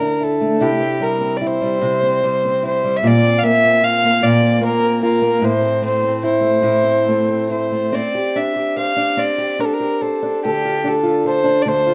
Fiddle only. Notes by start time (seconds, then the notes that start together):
Already playing: A#4
0.24 A4
0.63 G4
1.03 A#4
1.37 D5
1.47 C5
2.67 C5
2.97 E5
3.07 D5
3.39 F5
3.44 E5
3.84 F5
4.23 D5
4.65 A#4
5.04 A#4
5.44 C5
5.85 C5
6.25 C5
7.51 C5
7.95 D5
8.36 E5
8.78 F5
9.19 D5
9.60 A#4
9.65 A4
9.74 A#4
10.01 A4
10.45 G4
10.88 A4
11.28 C5
11.62 D5
11.68 C5